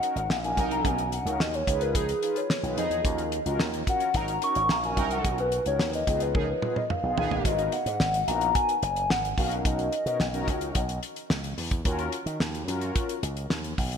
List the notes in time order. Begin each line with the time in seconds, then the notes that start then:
Already playing: F#5
0.02 C#4 D#4 F#4 A#4, closed hi-hat
0.15 G#1 F#5, closed hi-hat
0.29 A#1 F#5, snare
0.43 C#4 D#4 F#4 A#4 G#5, closed hi-hat
0.57 C2 F#3 D#4 A#4, kick, closed hi-hat
0.71 A#5, closed hi-hat
0.84 B1 C#4 D#4 F#4 A#4 G#5, kick, closed hi-hat
0.98 closed hi-hat
1.12 F#5, closed hi-hat
1.25 C#2 C#4 D#4 F#4 A#4, closed hi-hat
1.39 D#2 D#5, snare
1.54 C#5, closed hi-hat
1.67 C#2 D#4 F4 G#4 B4, kick, closed hi-hat
1.81 A#4, closed hi-hat
1.95 F3 D#4 G#4, kick, closed hi-hat
2.09 closed hi-hat
2.22 D#4 F4 G#4 B4, closed hi-hat
2.36 C#5, closed hi-hat
2.50 snare
2.63 B1 D#4 F4 G#4 B4, closed hi-hat
2.77 F2 F3 D#4 G#4 D#5, closed hi-hat
2.90 E2, closed hi-hat
3.05 D#2 C#4 F4 F#4 A#4, kick, closed hi-hat
3.18 closed hi-hat
3.32 closed hi-hat
3.46 C#2 C#4 F4 F#4 A#4, closed hi-hat
3.59 D#2, snare
3.74 closed hi-hat
3.87 C#4 F4 F#4 A#4 F#5, kick, closed hi-hat
4.00 closed hi-hat
4.14 G#1 F#3 C#4 D#4 F#4 A#4 A#5, kick, closed hi-hat
4.28 closed hi-hat
4.42 C#4 D#4 F#4 A#4 C#6, closed hi-hat
4.55 G#1, closed hi-hat
4.69 A#1 A#5, snare
4.83 C#4 D#4 F#4 A#4 G#5, closed hi-hat
4.97 C2 F#3 D#4 A#4, kick, closed hi-hat
5.11 F#5, closed hi-hat
5.24 B1 C#4 D#4 F#4 A#4, kick, closed hi-hat
5.38 B4, closed hi-hat
5.52 closed hi-hat
5.66 C#2 C#4 D#4 F#4 A#4 C#5, closed hi-hat
5.79 D#2, snare
5.93 D#5, closed hi-hat
6.07 C#2 B3 D#4 F4 G#4, kick, closed hi-hat
6.20 B4, closed hi-hat
6.34 F3 D#4 G#4 A#4, kick, high tom
6.50 B4
6.62 B3 D#4 F4 G#4, mid tom
6.76 D#5, mid tom
6.90 F5, mid tom
7.03 B1 B3 D#4 F4 G#4
7.17 A#1 D#3 B3 G#4, floor tom
7.31 A1, floor tom
7.45 G#1 B3 D#4 F#4 A#4 D#5, kick, closed hi-hat
7.58 closed hi-hat
7.72 F#5, closed hi-hat
7.86 G#2, closed hi-hat
8.00 G#1, snare
8.14 F#4 A#4, closed hi-hat
8.27 A#1 B3 D#4 F#4 A#4 A#5, closed hi-hat
8.41 closed hi-hat
8.55 G#5, kick, closed hi-hat
8.69 closed hi-hat
8.82 F#1 G#5, closed hi-hat
8.96 closed hi-hat
9.10 G#1 F#5, snare
9.25 closed hi-hat
9.37 B1 C#4 D#4 F#4 A#4 F5, kick, open hi-hat
9.51 closed hi-hat
9.65 B1 D#5, kick, closed hi-hat
9.79 closed hi-hat
9.92 closed hi-hat
10.06 B2 C#4 D#4 F#4 A#4, closed hi-hat
10.20 B1, snare
10.34 C#4 D#4 F#4 A#4, closed hi-hat
10.48 C#2, kick, closed hi-hat
10.61 closed hi-hat
10.75 B1, kick, closed hi-hat
10.89 closed hi-hat
11.03 closed hi-hat
11.16 closed hi-hat
11.30 C#2, snare
11.44 closed hi-hat
11.57 E2, open hi-hat
11.71 kick, closed hi-hat
11.85 D#2 C#4 F4 F#4 A#4, kick, closed hi-hat
11.99 closed hi-hat
12.12 closed hi-hat
12.26 D#3, closed hi-hat
12.40 D#2, snare
12.54 F#4 G#4, closed hi-hat
12.68 F#2 C#4 F4 F#4 A#4, closed hi-hat
12.81 closed hi-hat
12.96 kick, closed hi-hat
13.09 closed hi-hat
13.23 C#2, closed hi-hat
13.37 closed hi-hat
13.50 D#2, snare
13.64 closed hi-hat
13.78 B1, kick, open hi-hat
13.92 closed hi-hat